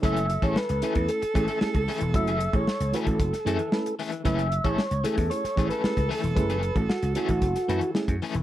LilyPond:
<<
  \new Staff \with { instrumentName = "Tonewheel organ" } { \time 4/4 \key fis \minor \tempo 4 = 114 e''8. cis''16 b'4 a'4. r8 | e''8. cis''8. b'16 a'4.~ a'16 r8 | e''8. cis''8. a'8 cis''8. b'8. a'8 | b'8. a'16 fis'8 fis'4. r4 | }
  \new Staff \with { instrumentName = "Tenor saxophone" } { \time 4/4 \key fis \minor a'1~ | a'2.~ a'8 r8 | r2 a'2~ | a'2.~ a'8 r8 | }
  \new Staff \with { instrumentName = "Reed electric piano" } { \time 4/4 \key fis \minor <a cis' e' a'>16 r16 <e' fis'>16 <a cis' e' gis'>16 r8 <a cis' e' a'>8. r16 <a cis' e' gis'>16 r16 <a cis' e' gis'>16 r16 gis'16 r16 | <a cis' e' fis'>16 r16 gis'16 <a cis' e' gis'>16 e'16 r16 <a cis' e' fis'>8. r16 <a cis' e' gis'>16 r16 <a cis' e' b'>16 r16 <e' gis'>16 r16 | <a cis' e' b'>16 r8 <a cis' e' gis'>16 r8 <a cis' e' gis'>8. r16 <a cis' e' gis'>16 gis'16 <a cis' e' gis'>16 r16 gis'16 r16 | <a cis' e' gis'>16 r16 <e' gis'>16 <a cis' e' fis'>16 gis'16 r16 <a cis' e' a'>8. r16 <a cis' e' b'>16 r16 <a cis' e' gis'>16 r16 <e' b'>16 r16 | }
  \new Staff \with { instrumentName = "Clean electric guitar" } { \time 4/4 \key fis \minor <e a cis' gis'>8 r16 <e a cis' a'>16 r8 <e a cis' gis'>8 r8 <e a cis' gis'>16 <e a cis' a'>16 r8 <e a cis' gis'>8 | r16 <e a cis' gis'>8 r8. <e a cis' gis'>8 r8 <e a cis' a'>8 r8 <e a cis' gis'>8 | <e a cis' gis'>8 r16 <e a cis' a'>16 r8 <e a cis' gis'>8 r8 <e a cis' gis'>16 <e a cis' a'>16 r8 <e a cis' gis'>8 | r16 <e a cis' gis'>8 r8. <e a cis' gis'>8 r8 <e a cis' a'>8 r8 <e a cis' gis'>8 | }
  \new Staff \with { instrumentName = "Slap bass" } { \clef bass \time 4/4 \key fis \minor fis,,8. a,,16 r16 cis,16 r16 e,16 r8 a,,16 r8 cis,16 r16 e,,16 | fis,,8. a,,16 r16 cis,16 r16 a,,16 fis,,16 r16 fis,16 r4 r16 | fis,,8. a,,16 r16 cis,16 r16 e,16 r8 a,,16 r8 cis,16 r16 e,,16 | fis,,8. a,,16 r16 cis,16 r16 a,,16 fis,,16 r16 fis,16 r8 fis,16 r16 e,,16 | }
  \new DrumStaff \with { instrumentName = "Drums" } \drummode { \time 4/4 <hh bd>16 hh16 hh16 <hh bd>16 sn16 hh16 hh16 <hh bd>16 hh16 hh16 <hh bd>16 hh16 sn16 <hh bd>16 <hho sn>16 hh16 | <hh bd>16 hh16 hh16 <hh bd>16 sn16 hh16 hh16 <hh bd>16 <hh bd>16 <hh sn>16 hh16 hh16 sn16 hh16 hho16 hh16 | <hh bd>16 hh16 hh16 <hh bd>16 sn16 hh16 hh16 <hh bd>16 hh16 <hh sn>16 <hh bd>16 hh16 sn16 <hh bd>16 <hho sn>16 hh16 | <hh bd>16 hh16 hh16 <hh bd>16 sn16 hh16 hh16 <hh bd>16 <hh bd>16 <hh sn>16 hh16 hh16 sn16 <hh bd>16 hho16 hh16 | }
>>